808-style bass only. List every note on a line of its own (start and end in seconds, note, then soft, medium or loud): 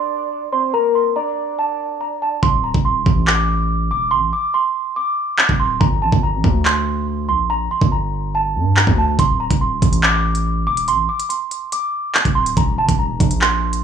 2.43 2.73 D1 loud
2.74 2.97 D1 loud
2.95 3.06 D#1 loud
3.06 3.92 A1 loud
3.91 4.13 D#1 loud
4.12 4.32 A1 loud
5.49 5.80 D1 loud
5.81 6.03 G1 loud
6.02 6.12 A#1 loud
6.12 6.35 G1 loud
6.34 6.44 A1 loud
6.44 7.30 D2 loud
7.29 7.69 A#1 loud
7.81 8.57 G1 loud
8.55 8.86 G2 loud
8.87 9.18 D2 loud
9.19 9.49 D1 loud
9.51 9.73 D1 loud
9.72 9.82 D#1 loud
9.82 10.68 A1 loud
10.67 10.89 D#1 loud
10.88 11.08 A1 loud
12.25 12.56 D1 loud
12.57 12.79 D#1 loud
12.78 12.88 G1 medium
12.89 13.11 D#1 loud
13.10 13.20 F1 loud
13.20 13.84 A#1 loud